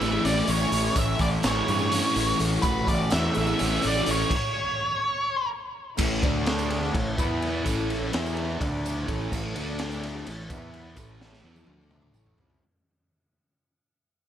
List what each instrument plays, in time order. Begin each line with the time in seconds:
Already playing: distorted electric guitar A2 E3, string section E3 A3 C#4 E4, lead electric guitar E5
0.01 fingered electric bass A1, distorted electric guitar A3, snare, closed hi-hat
0.25 fingered electric bass A1, distorted electric guitar C#4, lead electric guitar D5, closed hi-hat
0.48 fingered electric bass A1, distorted electric guitar E3, lead electric guitar C#5, closed hi-hat
0.60 tambourine
0.72 fingered electric bass A1, distorted electric guitar A3, closed hi-hat
0.96 fingered electric bass A1, distorted electric guitar A2, lead electric guitar E5, kick, closed hi-hat, tambourine
1.19 fingered electric bass A1, distorted electric guitar E3, lead electric guitar D5, kick, closed hi-hat
1.43 fingered electric bass A1, distorted electric guitar E3, lead electric guitar C#5, snare, closed hi-hat, tambourine
1.68 fingered electric bass G2, distorted electric guitar A3, closed hi-hat
1.79 string section F#4, tambourine
1.92 distorted electric guitar C#4, closed hi-hat
2.14 fingered electric bass A1, distorted electric guitar E3, closed hi-hat, tambourine
2.27 tambourine
2.39 fingered electric bass A1, distorted electric guitar A3, closed hi-hat
2.62 fingered electric bass A1, distorted electric guitar A2, lead electric guitar B4, kick, closed hi-hat, tambourine
2.87 fingered electric bass A1, distorted electric guitar E3, lead electric guitar D5, kick, closed hi-hat
3.10 fingered electric bass E2, distorted electric guitar E3, lead electric guitar E5, snare, closed hi-hat, tambourine
3.34 fingered electric bass A1, distorted electric guitar A3, lead electric guitar E5, closed hi-hat
3.47 tambourine
3.59 fingered electric bass A1, distorted electric guitar C#4, snare, closed hi-hat
3.82 fingered electric bass A1, distorted electric guitar E3, closed hi-hat, tambourine
3.87 lead electric guitar D5
3.94 tambourine
4.06 fingered electric bass A1, distorted electric guitar A3, closed hi-hat
4.11 lead electric guitar C#5
4.31 kick, crash
4.36 lead electric guitar C#5
5.97 fingered electric bass A1, distorted electric guitar A2 E3 A3, string section A3 C#4 E4 A4, kick, crash, tambourine
6.22 fingered electric bass D2, distorted electric guitar D3 A3 D4, string section D4 D5, kick, ride
6.46 snare, ride
6.59 tambourine
6.70 ride
6.85 tambourine
6.95 fingered electric bass A1, distorted electric guitar A2 E3, string section C#4 E4 C#5, kick, ride
7.17 fingered electric bass E2, distorted electric guitar E3 B3 E4, string section B3 E4 B4 E5, kick, ride, tambourine
7.42 ride
7.65 fingered electric bass A1, distorted electric guitar A2 E3 A3, string section C#4 A4 C#5, kick, ride, tambourine
7.90 ride
8.12 fingered electric bass E2, distorted electric guitar E3 B3 E4, string section B3 B4 E5, snare, ride
8.26 tambourine
8.37 ride
8.50 tambourine
8.59 fingered electric bass D2, distorted electric guitar D3 A3 D4, string section A3 D4 A4 D5, kick, ride
8.86 ride, tambourine
9.07 fingered electric bass A1, distorted electric guitar A2 E3 A3, string section C#4 E4 C#5, kick, ride
9.32 fingered electric bass A1, distorted electric guitar A2 E3 A3, kick, tambourine, crash
9.55 fingered electric bass D2, distorted electric guitar D3 A3 D4, string section A3 D4 D5, ride
9.79 snare, ride
9.92 tambourine
10.03 snare, ride
10.17 tambourine
10.26 fingered electric bass A1, distorted electric guitar A2 E3, string section C#4 E4 C#5, ride
10.49 fingered electric bass E2, distorted electric guitar E3 B3 E4, string section B3 E4 B4 E5, kick, ride, tambourine
10.74 ride
10.96 fingered electric bass A1, distorted electric guitar A2 E3 A3, string section C#4 A4 C#5, kick, ride, tambourine
11.21 snare
11.33 snare
11.43 fingered electric bass E2, distorted electric guitar E3 B3 E4, tambourine
11.56 high tom, tambourine
11.67 fingered electric bass D2, distorted electric guitar D3 A3 D4, string section A3 D4 D5, high tom
11.81 tambourine
11.91 mid tom, tambourine
12.02 mid tom
12.14 fingered electric bass A1, distorted electric guitar A2 E3 A3, string section C#4 E4 C#5, tambourine
12.26 floor tom, tambourine
12.38 fingered electric bass C2, distorted electric guitar C3 G3 C4, floor tom, tambourine
12.50 floor tom